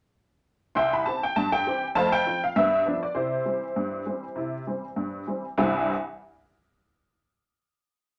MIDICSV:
0, 0, Header, 1, 2, 480
1, 0, Start_track
1, 0, Key_signature, 0, "major"
1, 0, Tempo, 601202
1, 600, Time_signature, 2, 2, 24, 8
1, 6536, End_track
2, 0, Start_track
2, 0, Title_t, "Honky-tonk piano"
2, 0, Program_c, 0, 3
2, 601, Note_on_c, 0, 84, 81
2, 605, Note_on_c, 0, 36, 70
2, 609, Note_on_c, 0, 76, 68
2, 611, Note_on_c, 0, 79, 62
2, 621, Note_on_c, 0, 52, 44
2, 733, Note_off_c, 0, 76, 0
2, 734, Note_off_c, 0, 79, 0
2, 738, Note_off_c, 0, 84, 0
2, 745, Note_on_c, 0, 83, 72
2, 747, Note_off_c, 0, 52, 0
2, 807, Note_off_c, 0, 36, 0
2, 844, Note_off_c, 0, 83, 0
2, 844, Note_on_c, 0, 81, 78
2, 848, Note_on_c, 0, 52, 42
2, 850, Note_on_c, 0, 60, 39
2, 853, Note_on_c, 0, 67, 48
2, 978, Note_off_c, 0, 52, 0
2, 979, Note_off_c, 0, 60, 0
2, 980, Note_off_c, 0, 81, 0
2, 981, Note_off_c, 0, 67, 0
2, 985, Note_on_c, 0, 79, 71
2, 1084, Note_off_c, 0, 79, 0
2, 1087, Note_on_c, 0, 81, 84
2, 1090, Note_on_c, 0, 43, 67
2, 1217, Note_on_c, 0, 79, 81
2, 1221, Note_off_c, 0, 81, 0
2, 1290, Note_off_c, 0, 43, 0
2, 1328, Note_on_c, 0, 52, 49
2, 1331, Note_on_c, 0, 60, 49
2, 1333, Note_on_c, 0, 67, 56
2, 1458, Note_off_c, 0, 52, 0
2, 1460, Note_off_c, 0, 60, 0
2, 1461, Note_off_c, 0, 67, 0
2, 1491, Note_off_c, 0, 79, 0
2, 1559, Note_on_c, 0, 41, 82
2, 1560, Note_on_c, 0, 81, 99
2, 1568, Note_on_c, 0, 77, 80
2, 1570, Note_on_c, 0, 72, 76
2, 1576, Note_on_c, 0, 57, 55
2, 1692, Note_off_c, 0, 77, 0
2, 1693, Note_off_c, 0, 72, 0
2, 1696, Note_on_c, 0, 79, 98
2, 1698, Note_off_c, 0, 81, 0
2, 1704, Note_off_c, 0, 57, 0
2, 1763, Note_off_c, 0, 41, 0
2, 1804, Note_on_c, 0, 53, 47
2, 1807, Note_on_c, 0, 60, 47
2, 1808, Note_on_c, 0, 65, 61
2, 1925, Note_off_c, 0, 79, 0
2, 1934, Note_off_c, 0, 53, 0
2, 1937, Note_off_c, 0, 60, 0
2, 1938, Note_off_c, 0, 65, 0
2, 1946, Note_on_c, 0, 77, 84
2, 2044, Note_off_c, 0, 77, 0
2, 2045, Note_on_c, 0, 43, 85
2, 2045, Note_on_c, 0, 76, 89
2, 2063, Note_on_c, 0, 59, 59
2, 2189, Note_off_c, 0, 59, 0
2, 2247, Note_off_c, 0, 43, 0
2, 2280, Note_on_c, 0, 53, 45
2, 2287, Note_on_c, 0, 59, 42
2, 2289, Note_on_c, 0, 62, 49
2, 2345, Note_off_c, 0, 76, 0
2, 2412, Note_off_c, 0, 53, 0
2, 2417, Note_off_c, 0, 59, 0
2, 2417, Note_on_c, 0, 74, 64
2, 2419, Note_off_c, 0, 62, 0
2, 2512, Note_on_c, 0, 72, 58
2, 2513, Note_on_c, 0, 48, 60
2, 2520, Note_off_c, 0, 74, 0
2, 2521, Note_on_c, 0, 64, 43
2, 2523, Note_on_c, 0, 67, 45
2, 2721, Note_off_c, 0, 48, 0
2, 2758, Note_on_c, 0, 52, 31
2, 2759, Note_on_c, 0, 55, 35
2, 2763, Note_on_c, 0, 60, 36
2, 2891, Note_off_c, 0, 52, 0
2, 2892, Note_off_c, 0, 55, 0
2, 2895, Note_off_c, 0, 60, 0
2, 3004, Note_on_c, 0, 43, 51
2, 3208, Note_off_c, 0, 43, 0
2, 3241, Note_on_c, 0, 52, 32
2, 3243, Note_on_c, 0, 55, 37
2, 3250, Note_on_c, 0, 60, 37
2, 3374, Note_off_c, 0, 52, 0
2, 3376, Note_off_c, 0, 55, 0
2, 3381, Note_off_c, 0, 60, 0
2, 3477, Note_on_c, 0, 48, 55
2, 3482, Note_off_c, 0, 64, 0
2, 3494, Note_on_c, 0, 64, 37
2, 3624, Note_off_c, 0, 64, 0
2, 3685, Note_off_c, 0, 48, 0
2, 3728, Note_on_c, 0, 52, 32
2, 3728, Note_on_c, 0, 55, 32
2, 3732, Note_on_c, 0, 60, 37
2, 3860, Note_off_c, 0, 52, 0
2, 3860, Note_off_c, 0, 55, 0
2, 3863, Note_off_c, 0, 60, 0
2, 3963, Note_on_c, 0, 43, 48
2, 4170, Note_off_c, 0, 43, 0
2, 4172, Note_off_c, 0, 72, 0
2, 4177, Note_off_c, 0, 67, 0
2, 4208, Note_on_c, 0, 52, 35
2, 4212, Note_on_c, 0, 55, 36
2, 4217, Note_on_c, 0, 60, 36
2, 4340, Note_off_c, 0, 52, 0
2, 4343, Note_off_c, 0, 55, 0
2, 4347, Note_off_c, 0, 60, 0
2, 4452, Note_on_c, 0, 36, 84
2, 4452, Note_on_c, 0, 43, 72
2, 4455, Note_on_c, 0, 52, 73
2, 4458, Note_on_c, 0, 60, 70
2, 4459, Note_on_c, 0, 55, 79
2, 4464, Note_on_c, 0, 64, 71
2, 4724, Note_off_c, 0, 36, 0
2, 4724, Note_off_c, 0, 43, 0
2, 4726, Note_off_c, 0, 52, 0
2, 4727, Note_off_c, 0, 60, 0
2, 4728, Note_off_c, 0, 55, 0
2, 4730, Note_off_c, 0, 64, 0
2, 6536, End_track
0, 0, End_of_file